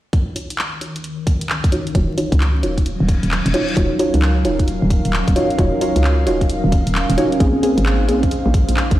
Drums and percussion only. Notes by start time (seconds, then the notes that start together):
0.13 kick, closed hi-hat
0.36 open hi-hat
0.50 closed hi-hat
0.59 clap
0.81 open hi-hat
0.96 closed hi-hat
1.04 closed hi-hat
1.27 kick, open hi-hat
1.41 closed hi-hat
1.49 clap
1.64 kick, closed hi-hat
1.72 open hi-hat
1.87 closed hi-hat
1.95 kick, closed hi-hat
2.18 open hi-hat
2.32 kick, closed hi-hat
2.40 clap
2.63 open hi-hat
2.78 kick, closed hi-hat
2.86 closed hi-hat
3.08 kick, open hi-hat
3.23 closed hi-hat
3.31 clap
3.46 closed hi-hat
3.54 open hi-hat
3.69 closed hi-hat
3.77 kick, closed hi-hat
3.99 open hi-hat
4.14 closed hi-hat
4.22 cross-stick, clap
4.45 open hi-hat
4.59 kick, closed hi-hat
4.68 closed hi-hat
4.90 kick, open hi-hat
5.05 closed hi-hat
5.13 clap
5.28 kick, closed hi-hat
5.36 cross-stick, open hi-hat
5.51 closed hi-hat
5.59 kick, closed hi-hat
5.81 open hi-hat
5.96 closed hi-hat
6.04 cross-stick, clap
6.27 open hi-hat
6.41 kick, closed hi-hat
6.50 closed hi-hat
6.72 kick, open hi-hat
6.87 closed hi-hat
6.95 clap
7.10 closed hi-hat
7.18 cross-stick, open hi-hat
7.32 closed hi-hat
7.40 kick, closed hi-hat
7.63 open hi-hat
7.78 closed hi-hat
7.86 cross-stick, clap
8.09 open hi-hat
8.23 kick, closed hi-hat
8.31 closed hi-hat
8.54 kick, open hi-hat
8.69 closed hi-hat
8.77 clap
8.91 kick, closed hi-hat